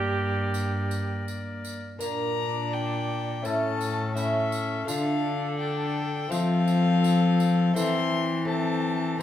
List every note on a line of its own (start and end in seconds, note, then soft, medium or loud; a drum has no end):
0.00 1.76 G2 medium
0.00 1.80 G2 medium
0.00 1.77 A#3 medium
0.00 1.95 A#3 soft
0.00 1.96 D4 medium
0.00 1.23 G4 loud
0.00 1.77 D5 medium
0.54 tambourine medium
0.91 tambourine soft
1.28 tambourine medium
1.65 tambourine soft
1.99 3.47 A#2 medium
1.99 3.42 A#2 soft
1.99 3.40 A#3 soft
1.99 3.41 D4 soft
1.99 3.42 D4 medium
1.99 3.46 D5 medium
1.99 2.75 A#5 medium
1.99 tambourine medium
2.73 3.47 G5 medium
3.42 4.88 A2 medium
3.42 4.13 A3 soft
3.42 4.14 C#4 soft
3.42 4.15 E4 soft
3.42 4.16 A4 medium
3.42 4.15 A5 medium
3.42 tambourine soft
3.46 4.85 A2 medium
3.46 4.16 C#4 medium
3.81 tambourine soft
4.15 4.84 A3 soft
4.15 4.86 C#4 soft
4.15 4.89 C#4 medium
4.15 4.86 E4 soft
4.15 4.87 A4 medium
4.15 4.86 E5 medium
4.15 tambourine soft
4.52 tambourine soft
4.85 6.29 D3 medium
4.85 6.26 A3 soft
4.85 6.27 D4 soft
4.85 6.34 D4 medium
4.85 6.27 F4 soft
4.85 6.28 A4 medium
4.85 5.58 F5 medium
4.85 tambourine medium
4.90 6.28 D3 medium
5.60 6.32 G5 medium
6.28 7.73 F3 medium
6.28 7.71 A3 soft
6.28 7.71 C4 medium
6.28 7.76 C4 medium
6.28 7.72 F4 soft
6.28 7.73 A4 medium
6.28 7.75 F5 loud
6.28 tambourine medium
6.32 7.74 F3 medium
6.68 tambourine soft
7.04 tambourine soft
7.40 tambourine medium
7.73 9.22 E3 medium
7.73 9.17 E3 medium
7.73 8.44 A3 soft
7.73 8.45 C4 soft
7.73 8.46 A4 soft
7.73 8.22 A4 medium
7.73 8.47 C6 loud
7.73 tambourine medium
7.77 8.47 C4 medium
8.45 9.16 A3 soft
8.45 9.17 C4 soft
8.45 9.18 A4 soft
8.45 9.16 A4 medium
8.45 9.19 A5 medium
8.49 9.19 C4 medium
9.17 9.23 A3 soft
9.17 9.23 C4 soft
9.17 9.23 C5 soft